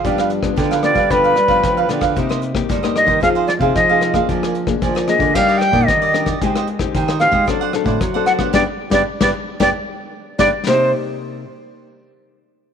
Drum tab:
HH |xxxxx-x-x-x-x-x-|x-xxxxx-xxx-x-x-|xxxxx-x-x-x-x-x-|x-xxxxx-xxx-x-x-|
SD |-r-r-rr-r-r-r-rr|-r-r-rr-r-r-r-rr|-r-r-rr-r-r-r-rr|-r-r-rr-r-r-r-rr|
BD |o--oo--oo--oo--o|o--oo--oo--oo--o|o--oo--oo--oo--o|o--oo--oo--oo--o|

HH |----------------|o---------------|
SD |o--o-o--o-----o-|o---------------|
BD |o--o-o--o-----o-|----------------|